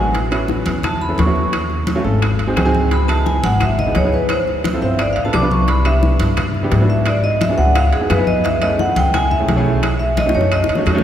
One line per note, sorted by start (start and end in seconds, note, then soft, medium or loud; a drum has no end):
0.00 0.61 A1 medium
0.00 0.13 G#3 medium
0.00 0.13 B3 medium
0.00 0.13 D4 medium
0.00 0.13 F#4 medium
0.00 0.12 G#5 loud
0.14 high bongo medium
0.14 high conga soft
0.14 high timbale medium
0.31 0.80 B3 medium
0.31 0.80 C#4 medium
0.31 0.80 E4 medium
0.31 0.81 F#4 medium
0.31 high conga soft
0.31 high timbale medium
0.31 claves medium
0.48 high bongo medium
0.48 high conga medium
0.66 1.15 E2 loud
0.66 high bongo soft
0.66 high conga loud
0.66 high timbale medium
0.83 1.01 A5 medium
0.83 high bongo medium
0.83 high conga soft
0.83 low conga medium
0.83 high timbale medium
0.83 claves medium
1.01 1.18 B5 medium
1.01 high bongo soft
1.01 high conga soft
1.08 1.21 B3 medium
1.08 1.21 C#4 medium
1.08 1.22 E4 medium
1.08 1.22 A4 medium
1.18 1.99 D#2 medium
1.18 1.51 C#6 medium
1.18 high bongo medium
1.18 low bongo medium
1.18 high conga medium
1.18 high timbale medium
1.18 low timbale medium
1.26 1.52 B3 medium
1.26 1.53 C#4 medium
1.26 1.53 E4 medium
1.26 1.53 F#4 medium
1.35 high bongo soft
1.35 high conga soft
1.53 high bongo medium
1.53 high conga soft
1.53 high timbale medium
1.53 claves medium
1.70 high bongo soft
1.70 high conga soft
1.87 high bongo medium
1.87 high conga medium
1.87 high timbale medium
1.95 2.02 A3 medium
1.95 2.02 C#4 medium
1.95 2.02 F4 medium
1.95 2.02 F#4 loud
2.03 2.53 G#1 medium
2.03 2.21 A3 medium
2.03 2.22 C#4 medium
2.03 2.22 F4 medium
2.03 2.22 A4 medium
2.03 high conga soft
2.22 high bongo medium
2.22 high conga soft
2.22 high timbale medium
2.22 claves medium
2.39 high bongo soft
2.39 high conga soft
2.39 high timbale medium
2.47 2.54 C4 medium
2.47 2.54 D#4 medium
2.47 2.54 F#4 medium
2.47 2.54 G#4 medium
2.56 3.38 C#2 medium
2.56 2.63 C4 medium
2.56 2.63 D#4 medium
2.56 2.63 F#4 medium
2.56 2.63 G#4 medium
2.56 high bongo medium
2.56 low bongo medium
2.56 high conga medium
2.56 high timbale medium
2.56 low timbale medium
2.56 claves medium
2.65 2.91 C4 loud
2.65 2.91 D#4 medium
2.65 2.91 F#4 medium
2.65 2.92 G#4 loud
2.74 high bongo soft
2.74 high conga medium
2.91 3.09 B5 medium
2.91 high bongo medium
2.91 high conga soft
2.91 high timbale medium
3.08 3.57 B3 medium
3.08 3.57 D#4 medium
3.08 3.57 E4 medium
3.08 3.57 G#4 medium
3.08 3.25 A5 medium
3.08 high conga soft
3.08 high timbale medium
3.08 claves medium
3.26 3.43 G#5 medium
3.26 high bongo medium
3.26 high conga medium
3.43 3.92 G#1 medium
3.43 3.61 F#5 medium
3.43 high bongo soft
3.43 high conga loud
3.43 high timbale medium
3.60 3.79 E5 medium
3.60 high bongo medium
3.60 high conga soft
3.60 low conga medium
3.60 high timbale loud
3.60 claves medium
3.78 3.95 D#5 medium
3.78 high bongo soft
3.78 high conga soft
3.78 low conga medium
3.86 3.99 B3 medium
3.86 3.99 D#4 medium
3.86 3.99 E4 medium
3.86 3.99 G#4 medium
3.95 4.76 D2 medium
3.95 4.13 C#5 medium
3.95 high bongo medium
3.95 low bongo medium
3.95 high conga medium
3.95 high timbale medium
4.04 4.30 B3 medium
4.04 4.30 D#4 medium
4.04 4.30 E4 medium
4.04 4.30 G#4 medium
4.12 4.30 B4 medium
4.12 high bongo soft
4.12 high conga soft
4.29 4.41 C5 medium
4.29 high bongo medium
4.29 high conga soft
4.29 high timbale loud
4.29 claves medium
4.47 high bongo soft
4.47 high conga soft
4.64 high bongo medium
4.64 high conga medium
4.64 high timbale medium
4.73 4.79 C4 medium
4.73 4.79 E4 medium
4.73 4.80 F4 medium
4.73 4.80 A4 medium
4.81 5.14 G1 medium
4.81 4.99 C4 medium
4.81 4.99 E4 medium
4.81 4.99 F4 medium
4.81 4.99 C5 medium
4.81 4.99 E5 medium
4.81 high conga soft
4.99 5.11 D5 medium
4.99 high bongo medium
4.99 high conga soft
4.99 high timbale medium
4.99 claves medium
5.13 5.33 A1 medium
5.13 5.23 F5 medium
5.13 high timbale medium
5.17 high bongo soft
5.17 high conga soft
5.25 5.31 B3 medium
5.25 5.31 D4 medium
5.25 5.31 F4 medium
5.25 5.31 A4 medium
5.25 5.35 A5 medium
5.33 6.15 C2 medium
5.33 5.39 B3 medium
5.33 5.40 D4 medium
5.33 5.40 F4 medium
5.33 5.40 G4 medium
5.33 5.51 D6 loud
5.33 high bongo medium
5.33 low bongo medium
5.33 high conga medium
5.33 high timbale medium
5.33 claves medium
5.42 5.68 B3 medium
5.42 5.68 D4 medium
5.42 5.68 F4 medium
5.42 5.68 B4 medium
5.51 5.68 C#6 medium
5.51 high bongo soft
5.51 high conga medium
5.68 5.85 B5 medium
5.68 high bongo medium
5.68 high conga soft
5.68 high timbale medium
5.85 6.34 B3 medium
5.85 6.34 D4 medium
5.85 6.34 E4 medium
5.85 6.34 G4 medium
5.85 5.96 E5 loud
5.85 high conga soft
5.85 high timbale medium
5.85 claves medium
6.03 high bongo medium
6.03 high conga medium
6.20 6.68 G2 medium
6.20 high bongo soft
6.20 high conga loud
6.20 high timbale medium
6.37 high bongo medium
6.37 high conga soft
6.37 low conga medium
6.37 high timbale medium
6.37 claves medium
6.54 high bongo soft
6.54 high conga soft
6.63 6.75 B3 medium
6.63 6.75 D4 medium
6.63 6.76 E4 medium
6.63 6.76 G4 medium
6.72 7.53 G#2 medium
6.72 high bongo medium
6.72 low bongo medium
6.72 high conga medium
6.72 high timbale medium
6.72 low timbale medium
6.80 7.06 B3 medium
6.80 7.06 D4 medium
6.80 7.07 E4 medium
6.80 7.07 F#4 medium
6.89 7.06 E5 medium
6.89 high bongo soft
6.89 high conga soft
7.06 7.24 D5 medium
7.06 high bongo medium
7.06 high conga soft
7.06 high timbale loud
7.06 claves medium
7.23 7.41 D#5 loud
7.23 high bongo soft
7.23 high conga soft
7.41 7.58 E5 loud
7.41 high bongo medium
7.41 high conga loud
7.41 high timbale medium
7.49 7.55 B3 medium
7.49 7.56 D4 medium
7.49 7.56 F#4 medium
7.49 7.56 G#4 medium
7.58 7.90 C#2 loud
7.58 7.75 B3 medium
7.58 7.75 D4 medium
7.58 7.76 F#4 medium
7.58 7.76 G#4 medium
7.58 7.75 F#5 loud
7.58 high conga soft
7.75 7.92 F5 loud
7.75 high bongo medium
7.75 high conga soft
7.75 high timbale medium
7.75 claves medium
7.93 8.09 F2 medium
7.93 8.09 G#4 medium
7.93 high bongo soft
7.93 high conga soft
7.93 high timbale medium
8.00 8.07 B3 medium
8.00 8.07 D#4 medium
8.00 8.07 F4 medium
8.00 8.07 G#4 medium
8.10 8.91 F#2 medium
8.10 8.16 B3 medium
8.10 8.16 D#4 medium
8.10 8.16 F4 medium
8.10 8.16 G#4 medium
8.10 8.27 B4 medium
8.10 high bongo medium
8.10 low bongo medium
8.10 high conga medium
8.10 high timbale medium
8.10 claves medium
8.17 8.44 B3 medium
8.17 8.44 D#4 medium
8.17 8.44 F4 medium
8.17 8.45 G#4 loud
8.27 8.44 D#5 medium
8.27 high bongo soft
8.27 high conga medium
8.44 8.61 E5 loud
8.44 high bongo medium
8.44 high conga soft
8.44 high timbale medium
8.61 9.10 A3 medium
8.61 9.10 C#4 medium
8.61 9.10 E4 medium
8.61 9.10 G#4 medium
8.61 8.79 D#5 medium
8.61 high conga soft
8.61 high timbale medium
8.61 claves medium
8.79 8.96 F#5 loud
8.79 high bongo medium
8.79 high conga medium
8.96 9.44 C#2 medium
8.96 9.14 G5 loud
8.96 high bongo soft
8.96 high conga loud
8.96 high timbale medium
9.14 9.31 G#5 loud
9.14 high bongo medium
9.14 high conga soft
9.14 low conga medium
9.14 high timbale medium
9.14 claves medium
9.31 9.41 E5 medium
9.31 high bongo soft
9.31 high conga soft
9.31 low conga medium
9.39 9.51 A3 medium
9.39 9.52 C#4 medium
9.39 9.52 E4 medium
9.39 9.52 G#4 medium
9.48 10.29 B1 medium
9.48 high bongo medium
9.48 low bongo medium
9.48 high conga medium
9.48 high timbale medium
9.48 low timbale medium
9.56 9.82 A3 loud
9.56 9.83 C#4 medium
9.56 9.83 E4 medium
9.56 9.83 G#4 loud
9.66 high bongo soft
9.66 high conga soft
9.83 high bongo medium
9.83 high conga soft
9.83 high timbale medium
9.83 claves medium
9.99 10.16 E5 medium
9.99 high bongo soft
9.99 high conga soft
10.17 10.34 D#5 loud
10.17 high bongo medium
10.17 high conga loud
10.17 high timbale medium
10.26 10.32 A3 medium
10.26 10.32 C#4 medium
10.26 10.32 D#4 medium
10.26 10.32 F#4 medium
10.26 high bongo medium
10.34 10.67 F#2 loud
10.34 10.65 A3 medium
10.34 10.65 C#4 medium
10.34 10.65 D#4 medium
10.34 10.65 F#4 medium
10.34 10.51 C#5 medium
10.34 high conga soft
10.41 high bongo medium
10.52 10.63 D#5 loud
10.52 high conga soft
10.52 high timbale medium
10.52 claves medium
10.64 high bongo medium
10.69 10.85 F#2 medium
10.69 high conga soft
10.69 high timbale medium
10.75 10.84 A3 medium
10.75 10.84 C#4 medium
10.75 10.84 D#4 medium
10.75 10.84 F#4 medium
10.75 low bongo medium
10.86 11.04 E2 medium
10.86 10.92 A3 medium
10.86 10.92 C#4 medium
10.86 10.92 D#4 medium
10.86 10.93 F#4 loud
10.86 high conga medium
10.86 high timbale medium
10.86 claves medium
10.94 11.04 A3 loud
10.94 11.04 C#4 loud
10.94 11.04 D#4 medium
10.94 11.04 F#4 loud
10.98 low bongo medium